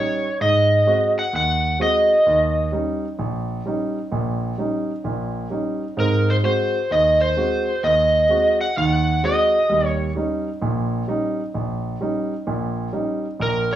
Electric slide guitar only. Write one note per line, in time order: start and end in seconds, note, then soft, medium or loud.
0.00 0.41 C#5 medium
0.42 1.20 D#5 medium
1.19 1.35 F#5 medium
1.36 1.78 F#5 loud
1.82 2.70 D#5 medium
6.00 6.30 A#4 medium
6.30 6.35 C5 medium
6.45 6.92 C5 medium
6.92 7.19 D#5 loud
7.21 7.85 C5 medium
7.84 8.61 D#5 medium
8.61 8.77 F#5 loud
8.78 9.25 F#5 loud
9.25 9.87 D#5 medium
9.87 10.12 C#5 medium
13.42 13.72 A#4 medium